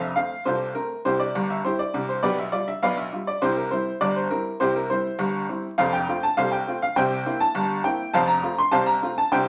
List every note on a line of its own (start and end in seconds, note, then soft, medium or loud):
0.00 0.11 F1 medium
0.00 0.11 F2 loud
0.00 0.16 E5 medium
0.16 0.32 A3 medium
0.16 0.32 C4 medium
0.16 0.44 F5 loud
0.45 0.71 C2 medium
0.45 0.71 C3 medium
0.45 0.74 F4 medium
0.45 0.74 A4 medium
0.45 0.69 C5 loud
0.75 0.91 A3 medium
0.75 0.92 C4 medium
0.75 0.99 A#4 loud
1.05 1.29 C2 medium
1.05 1.29 C3 medium
1.05 1.19 E4 medium
1.05 1.19 G4 medium
1.05 1.20 C5 loud
1.20 1.48 D5 loud
1.35 1.59 G1 loud
1.35 1.59 G2 medium
1.50 1.65 E5 loud
1.65 1.81 G3 medium
1.65 1.81 C4 medium
1.65 1.79 E4 medium
1.65 1.79 G4 medium
1.65 1.79 C5 medium
1.79 2.03 D5 medium
1.94 2.17 C2 medium
1.94 2.18 C3 medium
2.09 2.23 C5 medium
2.23 2.48 B1 medium
2.23 2.48 B2 loud
2.23 2.38 G4 medium
2.23 2.37 B4 medium
2.23 2.38 D5 loud
2.39 2.53 E5 medium
2.52 2.69 G3 medium
2.52 2.69 F4 medium
2.52 2.67 D5 loud
2.68 2.83 E5 loud
2.83 3.08 B1 medium
2.83 3.08 B2 medium
2.83 2.97 B4 medium
2.83 2.97 D5 medium
2.83 2.97 F5 loud
2.97 3.25 E5 medium
3.12 3.29 G3 medium
3.12 3.29 F4 medium
3.27 3.42 D5 medium
3.42 3.67 C2 loud
3.42 3.67 C3 loud
3.42 3.56 E4 medium
3.42 3.56 G4 medium
3.42 3.57 C5 loud
3.57 3.71 A#4 medium
3.71 3.87 G3 medium
3.71 3.88 C4 medium
3.71 3.88 E4 medium
3.71 3.95 C5 loud
4.01 4.26 G1 medium
4.01 4.26 G2 loud
4.01 4.16 D5 loud
4.16 4.31 C5 medium
4.30 4.47 G3 medium
4.30 4.47 C4 medium
4.30 4.47 E4 medium
4.30 4.54 A#4 loud
4.60 4.85 C2 medium
4.60 4.85 C3 loud
4.60 4.75 E4 medium
4.60 4.75 G4 medium
4.60 4.75 C5 loud
4.76 4.90 A#4 medium
4.90 5.06 G3 medium
4.90 5.06 C4 medium
4.90 5.07 E4 medium
4.90 5.18 C5 loud
5.19 5.44 G1 loud
5.19 5.44 G2 loud
5.49 5.65 G3 medium
5.49 5.65 C4 medium
5.49 5.66 E4 medium
5.78 6.04 F1 loud
5.78 6.03 F2 loud
5.78 5.93 A4 loud
5.78 5.93 C5 medium
5.78 5.93 F5 loud
5.93 6.21 G5 loud
6.08 6.24 A3 medium
6.08 6.25 C4 medium
6.08 6.25 F4 medium
6.23 6.38 A5 loud
6.37 6.63 C2 loud
6.37 6.63 C3 loud
6.37 6.52 A4 loud
6.37 6.52 C5 medium
6.37 6.52 F5 loud
6.52 6.76 G5 loud
6.67 6.83 A3 medium
6.67 6.84 C4 medium
6.67 6.84 F4 medium
6.82 6.97 F5 loud
6.96 7.21 C2 loud
6.96 7.21 C3 loud
6.96 7.38 C5 medium
6.96 7.38 E5 loud
6.96 7.38 G5 loud
7.26 7.42 A#3 medium
7.26 7.42 C4 medium
7.26 7.43 E4 medium
7.40 7.83 A5 loud
7.55 7.80 G1 loud
7.55 7.80 G2 loud
7.84 8.01 A#3 medium
7.84 8.01 C4 medium
7.84 8.01 E4 medium
7.84 8.13 G5 loud
8.13 8.39 F1 loud
8.13 8.39 F2 loud
8.13 8.28 C5 loud
8.13 8.28 F5 loud
8.13 8.29 A5 loud
8.28 8.56 A#5 loud
8.43 8.59 A3 medium
8.43 8.60 C4 medium
8.43 8.60 F4 medium
8.58 8.73 C6 loud
8.72 8.98 C2 loud
8.72 8.98 C3 loud
8.72 8.87 C5 loud
8.72 8.87 F5 loud
8.72 8.87 A5 loud
8.86 9.11 A#5 loud
9.02 9.19 A3 medium
9.02 9.19 C4 medium
9.02 9.19 F4 medium
9.18 9.33 A5 loud
9.32 9.48 C2 loud
9.32 9.48 C3 loud
9.32 9.48 C5 medium
9.32 9.48 E5 medium
9.32 9.48 G5 loud